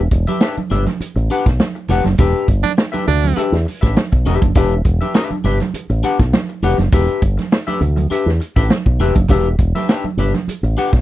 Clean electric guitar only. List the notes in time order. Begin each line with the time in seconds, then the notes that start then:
0.12 muted clean electric guitar stroke
0.27 D4 G4 B4 E5
0.41 D4 G4 B4 E5
0.57 muted clean electric guitar stroke
0.70 D4 G4 B4 E5
0.86 muted clean electric guitar stroke
1.16 muted clean electric guitar stroke
1.30 D4 G4 B4 F#5
1.60 muted clean electric guitar stroke
1.75 muted clean electric guitar stroke
1.90 D4 G4 B4 F#5
2.05 muted clean electric guitar stroke
2.19 D4 G4 B4 E5
2.63 muted clean electric guitar stroke
2.77 muted clean electric guitar stroke
2.92 D4 G4 B4 E5
3.06 muted clean electric guitar stroke
3.22 muted clean electric guitar stroke
3.36 D4 G4 B4 E5
3.66 muted clean electric guitar stroke
3.81 D4 G4 B4 E5
4.12 muted clean electric guitar stroke
4.26 D4 G4 B4 E5
4.41 muted clean electric guitar stroke
4.55 D4 G4 B4 E5
4.85 muted clean electric guitar stroke
5.01 D4 G4 B4 E5
5.14 D4 G4 B4 E5
5.31 muted clean electric guitar stroke
5.44 D4 G4 B4 E5
5.60 muted clean electric guitar stroke
5.90 muted clean electric guitar stroke
6.03 D4 G4 B4 F#5
6.19 muted clean electric guitar stroke
6.34 muted clean electric guitar stroke
6.49 muted clean electric guitar stroke
6.63 D4 G4 B4 F#5
6.79 muted clean electric guitar stroke
6.93 D4 G4 B4 E5
7.38 muted clean electric guitar stroke
7.52 muted clean electric guitar stroke
7.67 D4 G4 B4 E5
7.81 muted clean electric guitar stroke
7.96 muted clean electric guitar stroke
8.10 D4 G4 B4 E5
8.40 muted clean electric guitar stroke
8.56 D4 G4 B4 E5
8.86 muted clean electric guitar stroke
9.00 D4 G4 B4 E5
9.15 muted clean electric guitar stroke
9.30 D4 G4 B4 E5
9.59 muted clean electric guitar stroke
9.75 D4 G4 B4 E5
9.89 D4 G4 B4 E5
10.05 muted clean electric guitar stroke
10.18 D4 G4 B4 E5
10.34 muted clean electric guitar stroke
10.64 muted clean electric guitar stroke
10.77 D4 G4 B4 F#5